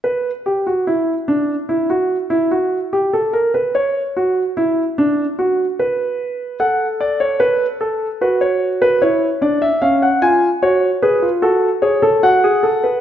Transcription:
\new Staff \with { instrumentName = "Grand piano" } { \time 4/4 \key fis \phrygian \tempo 4 = 74 << { b'8 g'16 fis'16 e'8 d'8 e'16 fis'8 e'16 fis'8 g'16 a'16 | ais'16 b'16 cis''8 fis'8 e'8 d'8 fis'8 b'4 | fis''8 d''16 cis''16 b'8 a'8 b'16 cis''8 b'16 cis''8 d''16 e''16 | eis''16 fis''16 gis''8 cis''8 b'8 a'8 cis''8 fis''4 | } \\ { r1 | r1 | a'2 fis'4 e'8 d'8 | cis'8 eis'8 fis'8 gis'16 eis'16 fis'8 gis'16 a'16 fis'16 gis'16 a'16 b'16 | } >> }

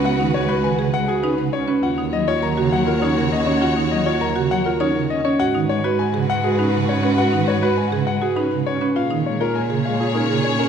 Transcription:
<<
  \new Staff \with { instrumentName = "Grand piano" } { \time 3/4 \key ees \minor \tempo 4 = 101 ges''16 r16 des''16 ces''16 aes''16 r16 ges''16 aes'16 ces''16 r16 des''16 ces''16 | ges''16 r16 ees''16 des''16 bes''16 r16 ges''16 bes'16 des''16 r16 ees''16 des''16 | ges''16 r16 ees''16 des''16 bes''16 r16 ges''16 bes'16 des''16 r16 ees''16 des''16 | ges''16 r16 des''16 ces''16 aes''16 r16 ges''16 aes'16 ces''16 r16 des''16 ces''16 |
ges''16 r16 des''16 ces''16 aes''16 r16 ges''16 aes'16 ces''16 r16 des''16 ces''16 | f''16 r16 des''16 bes'16 aes''16 r16 f''16 aes'16 bes'16 r16 des''16 bes'16 | }
  \new Staff \with { instrumentName = "String section" } { \time 3/4 \key ees \minor <ges' ces''>2~ <ges' ces''>8. r16 | <ges' des''>2.~ | <ges' des''>2~ <ges' des''>8. r16 | <ges' ces''>2.~ |
<ges' ces''>2~ <ges' ces''>8. r16 | <aes' des''>2. | }
  \new Staff \with { instrumentName = "Marimba" } { \time 3/4 \key ees \minor ges'16 ees'16 r16 ges'16 ces''16 aes'16 r16 ges'16 ees'16 ces''16 r16 des'16 | f'16 ees'16 r16 f'16 bes'16 ges'16 r16 f'16 ees'16 bes'16 r16 des'16 | f'16 ees'16 r16 f'16 bes'16 ges'16 r16 f'16 ees'16 bes'16 r16 des'16 | ges'16 ees'16 r16 ges'16 ces''16 aes'16 r16 ges'16 ees'16 ces''16 r16 des'16 |
ges'16 ees'16 r16 ges'16 ces''16 aes'16 r16 ges'16 ees'16 ces''16 r16 des'16 | f'16 ees'16 r16 f'16 bes'16 aes'16 r16 f'16 ees'16 bes'16 r16 des'16 | }
  \new Staff \with { instrumentName = "Pipe organ" } { \clef bass \time 3/4 \key ees \minor ces'16 ees16 aes16 r16 ees16 des16 aes16 r16 des'16 des16 des'16 r16 | r16 ees16 ges16 r16 ees16 des16 ges16 r16 des'16 des16 des'16 r16 | r16 ees16 ges16 r16 ees16 des16 ges16 r16 des'16 des16 des'16 r16 | r16 ees16 aes16 r8 des16 aes16 r16 des'16 des16 des'16 r16 |
r16 ees16 aes16 r8 des16 aes16 r16 des'16 des16 des'16 r16 | r16 ees16 aes16 r8 des16 aes16 r16 des'16 des16 des'16 r16 | }
  \new Staff \with { instrumentName = "Cello" } { \clef bass \time 3/4 \key ees \minor des,2. | ees,2.~ | ees,2. | aes,2.~ |
aes,2. | bes,2. | }
>>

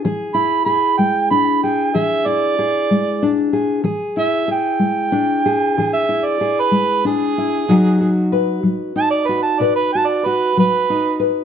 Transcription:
<<
  \new Staff \with { instrumentName = "Harmonica" } { \time 12/8 \key e \mixolydian \tempo 4. = 63 r8 b''8 b''8 g''8 b''8 g''8 e''8 d''2 r8 | r8 e''8 g''2~ g''16 e''8 d''8 b'8. gis'4~ | gis'4 r4 a''16 d''16 b'16 a''16 d''16 b'16 a''16 d''16 b'8 b'4 r8 | }
  \new Staff \with { instrumentName = "Steel-string acoustic guitar" } { \time 12/8 \key e \mixolydian << { gis'8 e'8 gis'4 d'8 gis'8 gis'8 e'8 gis'4 d'8 gis'8 | gis'8 e'8 gis'4 d'8 gis'8 gis'8 e'8 gis'4 d'8 e'8 | <fis dis' fis'>8 fis'8 b'4 dis'8 fis'8 b'8 fis'8 fis'4 dis'8 b'8 | } \\ { e4 r8 gis4 r8 e4 r8 gis4 r8 | e4 r8 gis4 r8 e4 r8 gis4 r8 | b,4 r8 fis4 r8 b,4 r8 fis4 r8 | } >> }
>>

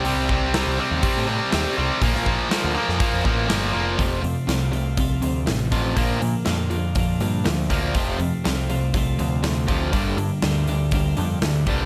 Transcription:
<<
  \new Staff \with { instrumentName = "Clean electric guitar" } { \time 4/4 \key f \mixolydian \tempo 4 = 121 r1 | r1 | <f, c f a c' f'>4 <f a c' f'>8 <f a c' f'>8 <f, c f a c' f'>8 <f a c' f'>4 <f a c' f'>8 | <bes, d bes d' f'>4 <d bes d' f'>8 <bes d' f'>8 <bes, d bes d' f'>8 <bes d' f'>4 <bes d' f'>8 |
<f, c f a c' f'>4 <f a c' f'>8 <f a c' f'>8 <f, c f a c' f'>8 <f a c' f'>4 <f a c' f'>8 | <g, d g bes d' g'>4 <g bes d' g'>8 <g bes d' g'>8 <g, d g bes d' g'>8 <g bes d' g'>4 <g bes d' g'>8 | }
  \new Staff \with { instrumentName = "Distorted electric guitar" } { \clef bass \time 4/4 \key f \mixolydian <c g c'>8 <c g c'>8 <c g c'>8 <c g c'>8 <c g c'>8 <c g c'>8 <c g c'>8 <c g c'>8 | <bes, f bes>8 <bes, f bes>8 <bes, f bes>8 <bes, f bes>8 <bes, f bes>8 <bes, f bes>8 <bes, f bes>8 <bes, f bes>8 | r1 | r1 |
r1 | r1 | }
  \new Staff \with { instrumentName = "Distorted electric guitar" } { \clef bass \time 4/4 \key f \mixolydian <c g c'>8 <c g c'>8 <c g c'>8 <c g c'>8 <c g c'>8 <c g c'>8 <c g c'>8 <c g c'>8 | <bes, f bes>8 <bes, f bes>8 <bes, f bes>8 <bes, f bes>8 <bes, f bes>8 <bes, f bes>8 <bes, f bes>8 <bes, f bes>8 | <f, c f>8 <f, c>8 <f, c>8 <f, c>8 <f, c>8 <f, c>8 <f, c>8 <f, c f>8 | <bes, f bes>8 <bes, f>8 <bes, f>8 <bes, f>8 <bes, f>8 <bes, f>8 <bes, f>8 <bes, f bes>8 |
<f, c f>8 <f, c>8 <f, c>8 <f, c>8 <f, c>8 <f, c>8 <f, c>8 <f, c f>8 | <g, d g>8 <g, d>8 <g, d>8 <g, d>8 <g, d>8 <g, d>8 <g, d>8 <g, d g>8 | }
  \new Staff \with { instrumentName = "Picked electric bass" } { \clef bass \time 4/4 \key f \mixolydian c,16 c,4 c,16 r16 ees,16 r16 a,8 r16 ees,16 r16 c,16 r16 | bes,,16 bes,,8 r8 d,16 r16 f,16 r16 f,16 a,,8 g,,8 f,,8 | f,,8 f,16 r16 c,4. d,8 a,,4 | bes,,8 bes,16 r16 f,4. g,8 d,4 |
f,,8 f,16 r16 c,4. d,8 d,4 | g,,8 g,16 r16 d,4. f,8 d,8 c,8 | }
  \new DrumStaff \with { instrumentName = "Drums" } \drummode { \time 4/4 hho8 bd8 <hho sn>4 <hho bd>4 <hho sn>4 | <hho bd>16 sn16 bd8 <hho sn>8. sn16 <hho bd>8 bd8 <hho sn>4 | <hho bd>8 hho8 <hho sn>8 hho8 <hho bd>8 hho8 <hho sn>8 <hho bd>8 | <hho bd>8 hho8 <hho sn>8 hho8 <hho bd>8 hho8 <hho sn>8 <hho bd>8 |
<hho bd>8 hho8 <hho sn>8 hho8 <hho bd>8 hho8 <hho sn>8 <hho bd>8 | <hho bd>8 hho8 <hho sn>8 hho8 <hho bd>8 hho8 <hho sn>8 <hho bd>8 | }
>>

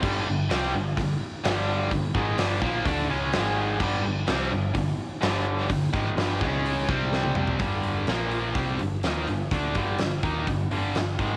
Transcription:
<<
  \new Staff \with { instrumentName = "Distorted electric guitar" } { \clef bass \time 4/4 \key g \minor \tempo 4 = 126 <g, d g>8 <g, d>8 <c g c'>8 <g, d>8 <g, d>8 r8 <g, d g>4 | <g, d>8 <aes, ees aes>8 <g, d g>8 <bes, f bes>8 <d a d'>8 <cis aes cis'>8 <aes, ees aes>4 | <g, d g>8 <g, d>8 <c g c'>8 <g, d>8 <g, d>8 r8 <g, d g>4 | <g, d>8 <aes, ees aes>8 <g, d g>8 <cis gis cis'>4 <c g c'>4. |
<g, d g>4 <bes, f bes>4 <c g c'>8 <g, d>8 <ees bes ees'>8 <g, d>8 | <d a d'>8 <g, d g>8 <g, d>8 <ees bes ees'>8 <g, d>8 <g, d g>8 <g, d>8 <aes, ees aes>8 | }
  \new Staff \with { instrumentName = "Overdriven electric guitar" } { \clef bass \time 4/4 \key g \minor <g, d g>8 <g, d>8 <c g c'>8 <g, d>8 <g, d>8 r8 <g, d g>4 | <g, d>8 <aes, ees aes>8 <g, d g>8 <bes, f bes>8 <d a d'>8 <cis aes cis'>8 <aes, ees aes>4 | <g, d g>8 <g, d>8 <c g c'>8 <g, d>8 <g, d>8 r8 <g, d g>4 | <g, d>8 <aes, ees aes>8 <g, d g>8 <cis gis cis'>4 <c g c'>4. |
<g, d g>4 <bes, f bes>4 <c g c'>8 <g, d>8 <ees bes ees'>8 <g, d>8 | <d a d'>8 <g, d g>8 <g, d>8 <ees bes ees'>8 <g, d>8 <g, d g>8 <g, d>8 <aes, ees aes>8 | }
  \new Staff \with { instrumentName = "Overdriven electric guitar" } { \clef bass \time 4/4 \key g \minor <g, d g>8 <g, d>8 <c g c'>8 <g, d>8 <g, d>8 r8 <g, d g>4 | <g, d>8 <aes, ees aes>8 <g, d g>8 <bes, f bes>8 <d a d'>8 <cis aes cis'>8 <aes, ees aes>4 | <g, d g>8 <g, d>8 <c g c'>8 <g, d>8 <g, d>8 r8 <g, d g>4 | <g, d>8 <aes, ees aes>8 <g, d g>8 <cis gis cis'>4 <c g c'>4. |
r1 | r1 | }
  \new Staff \with { instrumentName = "Picked electric bass" } { \clef bass \time 4/4 \key g \minor g,,8 g,,8 c,8 g,,8 g,,8 r8 g,,4 | g,,8 aes,,8 g,,8 bes,,8 d,8 cis,8 aes,,4 | g,,8 g,,8 c,8 g,,8 g,,8 r8 g,,4 | g,,8 aes,,8 g,,8 cis,4 c,4. |
g,,4 bes,,4 c,8 g,,8 ees,8 g,,8 | d,8 g,,8 g,,8 ees,8 g,,8 g,,8 g,,8 aes,,8 | }
  \new DrumStaff \with { instrumentName = "Drums" } \drummode { \time 4/4 <cymc bd>4 <hho sn>4 <hho bd>4 <hho sn>4 | <hho bd>8 bd8 <hho sn>8 bd8 <hho bd>4 <hho sn>4 | <cymc bd>4 <hho sn>4 <hho bd>4 <hho sn>4 | <hho bd>8 bd8 <hho sn>8 bd8 hho8 bd8 sn16 tommh16 toml16 tomfh16 |
<hho bd>8 hho8 <hho sn>8 hho8 <hho bd>8 hho8 <hho sn>8 hho8 | <hho bd>8 <hho bd>8 <hho sn>8 <hho bd>8 <hho bd>8 hho8 <hho sn>8 <hho bd>8 | }
>>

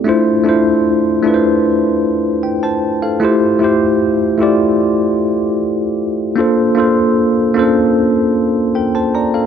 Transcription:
\new Staff \with { instrumentName = "Tine electric piano" } { \time 4/4 \key d \minor \tempo 4 = 76 << { r2. g''16 <c'' a''>8 <a' f''>16~ | <a' f''>16 r2. r8. | r2. <bes' g''>16 <c'' a''>16 <d'' bes''>16 <a' f''>16 | } \\ { <a d' e' f' c''>8 <a d' e' f' c''>8. r16 <a d' e' f' b' c''>4. r4 | <a e' f' g' c''>8 <a e' f' g' c''>8. r16 <a e' f' g' d''>4. r4 | <bes d' f' a' c''>8 <bes d' f' a' c''>8. r16 <bes cis' d' f' a' c''>4. r4 | } >> }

